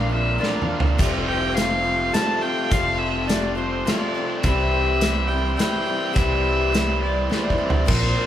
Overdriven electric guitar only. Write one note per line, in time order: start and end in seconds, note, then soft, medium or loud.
0.00 0.38 A#2 medium
0.00 0.39 D3 medium
0.00 0.39 A#3 medium
0.00 0.40 D4 medium
0.00 0.41 F4 medium
0.39 0.96 A#2 medium
0.39 0.96 D3 medium
0.39 0.96 A#3 medium
0.39 0.97 D4 medium
0.39 1.00 F4 medium
0.98 2.11 F2 medium
0.98 2.12 C3 medium
0.98 2.12 F3 medium
0.98 2.12 A3 medium
0.98 2.16 C4 medium
0.98 2.13 F4 medium
2.14 2.69 F2 medium
2.14 2.70 C3 medium
2.14 2.70 F3 medium
2.14 2.70 A3 medium
2.14 2.72 C4 medium
2.14 2.71 F4 medium
2.71 3.84 F2 medium
2.71 3.84 C3 medium
2.71 3.84 F3 medium
2.71 3.85 A3 medium
2.71 3.88 C4 medium
2.71 3.85 F4 medium
3.86 4.42 F2 medium
3.86 4.42 C3 medium
3.86 4.43 F3 medium
3.86 4.43 A3 medium
3.86 4.45 C4 medium
3.86 4.44 F4 medium
4.44 5.57 C3 medium
4.44 5.57 E3 medium
4.44 5.58 G3 medium
4.44 5.60 C4 medium
4.44 5.58 E4 medium
5.58 6.14 C3 medium
5.58 6.14 E3 medium
5.58 6.15 G3 medium
5.58 6.16 C4 medium
5.58 6.16 E4 medium
6.15 7.29 C3 medium
6.15 7.29 E3 medium
6.15 7.29 G3 medium
6.15 7.29 C4 medium
6.15 7.30 E4 medium
7.30 7.86 C3 medium
7.30 7.86 E3 medium
7.30 7.86 G3 medium
7.30 7.87 C4 medium
7.30 7.87 E4 medium
7.88 8.26 A#2 medium
8.17 8.26 F3 medium